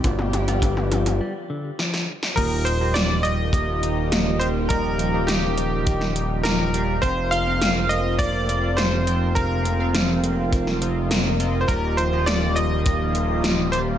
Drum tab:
CC |----------------|x---------------|----------------|----------------|
HH |x-xxx-xx--------|x-x-x-x-x-x-x-x-|x-x-x-x-x-x-x-x-|x-x-x-x-x-x-x-x-|
SD |------------oo-o|----o-------o---|----o----o--o---|----o-------o---|
T2 |oooooooo--------|----------------|----------------|----------------|
BD |o---o-----------|o-------o-------|o-------o-------|o-------o-------|

CC |----------------|----------------|
HH |x-x-x-x-x-x-x-x-|x-x-x-x-x-x-x-x-|
SD |----o----o--o---|----o-------o---|
T2 |----------------|----------------|
BD |o-------o-------|o-------o-------|